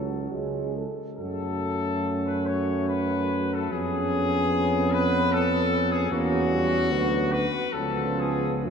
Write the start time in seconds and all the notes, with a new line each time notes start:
Already playing: C#2 F#3 C#4 F#4 A4
0.31 C#2 G#3 C#4 G#4
0.76 A4
1.18 F#2 A3 C#4 F#4 A4
2.26 B4
2.47 C#5
2.88 B4
3.53 A4
3.71 F2 B3 C#4 G#4
4.93 B4
5.33 A4
5.92 G#4
6.11 E2 A#3 C#4 F#4
6.51 G3
6.92 D2 F#3 B3 F#4
7.32 B4
7.73 C#2 F3 B3 C#4 A4
8.20 G#4
8.64 F#2 A3 C#4 G#4